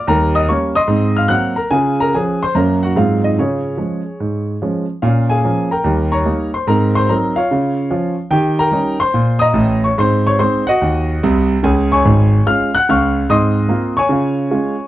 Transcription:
X:1
M:4/4
L:1/8
Q:"Swing" 1/4=145
K:Db
V:1 name="Grand piano"
[Bb] [ee'] [dd'] [ec'e']2 [ff'] [gg'] [Bb] | [Aa] [Bb] [Aa] [cc'] [Bb] [Gg] [Ff] [Ee] | [DAd]6 z2 | [Ff] [Afa]2 [B=gb]2 [dbd']2 [cc'] |
[Bb] [cc'] [Bb] [Fdf]4 z | [=G=g] [Bgb]2 [cc']2 [ebe']2 [dd'] | [cc'] [dd'] [cc'] [Geg]4 z | [Aa] [dad']3 [ff'] [gg'] [fd'f']2 |
[ec'e']3 [dad']4- [dad'] |]
V:2 name="Grand piano" clef=bass
[E,,=G,]2 [G,B,D]2 [A,,C]2 [_G,B,C]2 | [D,F]2 [F,D]2 [G,,G,B,D]2 [A,,G,A,C]2 | [D,F]2 [F,A,D]2 A,,2 [F,A,D]2 | [B,,D]2 [F,B,D]2 [E,,=G,]2 [G,B,E]2 |
[A,,C]2 [G,CE]2 [D,F]2 [F,DF]2 | E,2 [=G,DE]2 B,,2 [=A,,,=A,,]2 | [A,,C]2 [A,CE]2 E,,2 [C,,C,]2 | [D,,D,]2 [A,,,A,,]2 [A,DF]2 [D,,D,]2 |
[A,,C]2 [B,CF]2 [D,F]2 [A,DF]2 |]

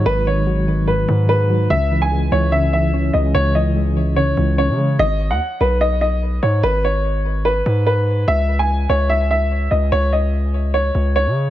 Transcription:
X:1
M:4/4
L:1/16
Q:1/4=146
K:G#m
V:1 name="Grand piano"
B2 c6 B4 B4 | e3 g3 c2 e2 e4 d2 | c2 d6 c4 c4 | d3 f3 B2 d2 d4 c2 |
B2 c6 B4 B4 | e3 g3 c2 e2 e4 d2 | c2 d6 c4 c4 |]
V:2 name="Synth keys" clef=bass
[G,,D,F,G,]2 D,2 F,2 D,2 G,,2 D,2 G,2 F,2 | C,2 E,2 G,2 E,2 C,2 E,2 C2 G,2 | C,2 E,2 G,2 E,2 C,2 E,2 C2 G,2 | z16 |
z16 | z16 | z16 |]
V:3 name="808-style bass" clef=bass
G,,,8- G,,,2 G,,6 | C,,6 C,,8 C,,2 | C,,8- C,,2 C,,3 C,3 | G,,,3 D,, z2 B,,,8 G,,2 |
G,,,8- G,,,2 G,,6 | C,,6 C,,8 C,,2 | C,,8- C,,2 C,,3 C,3 |]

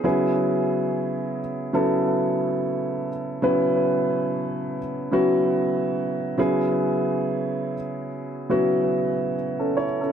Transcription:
X:1
M:4/4
L:1/16
Q:"Swing 16ths" 1/4=71
K:F#m
V:1 name="Upright piano"
z16 | z16 | z12 z [CA] [Ec] [CA] |]
V:2 name="Upright piano"
[C,F,B,EG]6 z2 [C,F,B,EA]6 z2 | [C,F,B,EB]6 z2 [C,F,B,EF]6 [C,F,B,EG]2- | [C,F,B,EG]4 z4 [C,F,B,EF]6 z2 |]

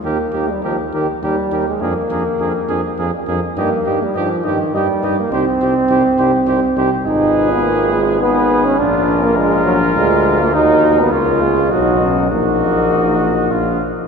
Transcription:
X:1
M:3/4
L:1/16
Q:1/4=102
K:Eb
V:1 name="Trumpet"
B2 B2 B2 B2 B2 B2 | B2 B2 B2 B2 B2 B2 | e2 e2 e2 e2 e2 e2 | c2 c2 c2 c2 c2 c2 |
[K:Ebm] c8 c4 | B12 | B4 d4 ^d4 | e8 f2 z2 |]
V:2 name="Trumpet"
G2 G2 G2 G2 G2 G2 | A2 A2 A2 A2 A2 A2 | G2 G2 G2 G2 G2 G2 | G2 G2 G2 G2 G2 G2 |
[K:Ebm] A8 A4 | F4 F8 | E4 F4 ^F4 | G8 F2 z2 |]
V:3 name="French horn"
E2 E2 E2 E2 E2 E2 | D2 D2 D2 D2 D2 D2 | E2 E2 E2 E2 E2 E2 | E2 E2 E2 E2 E2 E2 |
[K:Ebm] F8 E4 | =D8 F4 | G4 F4 ^D2 _D2 | E8 =D2 z2 |]
V:4 name="Trombone"
B,3 G, F,2 E,2 G,3 A, | B,8- B,2 z2 | B,3 G, F,2 E,2 G,3 B, | C8- C2 z2 |
[K:Ebm] E3 C B,2 A,2 C3 D | =D3 B, A,2 G,2 A,3 B, | E3 C B,2 A,2 ^F,4 | B,8- B,2 z2 |]
V:5 name="Bass trombone" clef=bass
E,,2 E,,2 E,,2 E,,2 E,,2 E,,2 | F,,2 F,,2 F,,2 F,,2 F,,2 F,,2 | G,,2 G,,2 G,,2 G,,2 G,,2 G,,2 | C,,2 C,,2 C,,2 C,,2 C,,2 C,,2 |
[K:Ebm] A,,,12 | B,,,8 =D,,4 | E,,4 D,,4 =B,,,4 | B,,,8 B,,,2 z2 |]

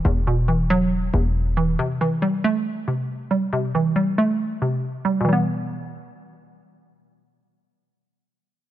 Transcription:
X:1
M:4/4
L:1/8
Q:1/4=138
K:Em
V:1 name="Synth pluck" clef=bass
[E,,E,] B,, E, F,2 E,,2 E, | C, E, G, A,2 C,2 G, | C, E, G, A,2 C,2 G, | [B,,E,G,B,]8- |
[B,,E,G,B,]8 |]
V:2 name="808-style bass" clef=bass
E,,,4- E,,, E,,,3 | z8 | z8 | z8 |
z8 |]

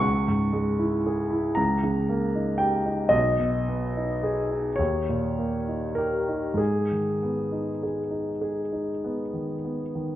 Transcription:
X:1
M:6/8
L:1/16
Q:3/8=36
K:G#m
V:1 name="Grand piano"
c'6 a4 =g2 | d6 c4 A2 | G6 z6 |]
V:2 name="Grand piano"
C,, G,, G, E G E C,, C, A, D =G D | B,,, B,, B, D G D D,, A,, A, D =G D | G,, D, B, D G D G D B, D, B, D, |]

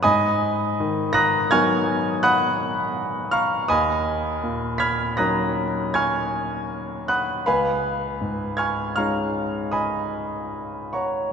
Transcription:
X:1
M:5/4
L:1/8
Q:1/4=80
K:G#dor
V:1 name="Grand piano"
[dgbd']3 [ad'f'a'] [gc'e'g']2 [fbd'f']3 [eac'e'] | [dgbd']3 [be'g'b'] [ad'f'a']2 [gc'e'g']3 [fbd'f'] | [Begb]3 [gc'e'g'] [eac'e']2 [dgbd']3 [cfac'] |]
V:2 name="Grand piano"
G,,2 D,2 [F,B,DA]6 | D,,2 A,,2 [F,CDA]6 | C,,2 G,,2 [G,CDE]6 |]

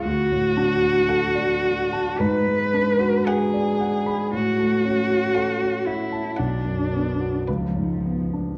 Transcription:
X:1
M:4/4
L:1/16
Q:1/4=57
K:F#m
V:1 name="Violin"
z4 f4 z4 f4 | z4 f4 f4 B4 |]
V:2 name="Cello"
F8 B4 G4 | F6 E2 D4 ^E,4 |]
V:3 name="Grand piano"
D,, A,, D F A d f a G,, G, D F B d f b | A,, A, C F A c f a B,,, F,, B, F C,, G,, B, D |]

